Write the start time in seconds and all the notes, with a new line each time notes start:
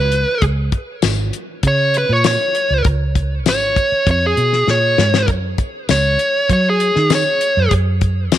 Already playing: C#2 B4
0.12 closed hi-hat
0.42 C#2, kick, closed hi-hat
0.72 kick, closed hi-hat
1.02 G#1, snare, closed hi-hat, tambourine
1.33 closed hi-hat
1.63 C#3, kick, closed hi-hat
1.67 C#5
1.94 B4, closed hi-hat
2.09 A#2 C#5
2.24 C#5, snare, closed hi-hat, tambourine
2.55 closed hi-hat
2.70 C#2
2.85 C#2, kick, closed hi-hat
3.15 kick, closed hi-hat
3.46 G#1 C#5, snare, closed hi-hat, tambourine
3.76 kick, closed hi-hat
3.92 muted fingered electric bass stroke
4.07 F2, kick, closed hi-hat
4.11 C#5
4.26 G#4
4.37 B2, closed hi-hat
4.53 snare
4.67 A#2 C#5, snare
4.98 G#2, snare
5.14 snare
5.28 F#2, kick, closed hi-hat
5.58 kick, closed hi-hat
5.89 C#2 C#5, snare, closed hi-hat, tambourine
6.19 closed hi-hat
6.49 F#3 C#5, kick, closed hi-hat
6.70 G#4
6.80 closed hi-hat
6.96 D#3, snare
7.10 snare, closed hi-hat, tambourine
7.15 C#5
7.41 closed hi-hat
7.57 F#2
7.71 F#2, kick, closed hi-hat
8.01 kick, closed hi-hat
8.32 C#2, snare, closed hi-hat, tambourine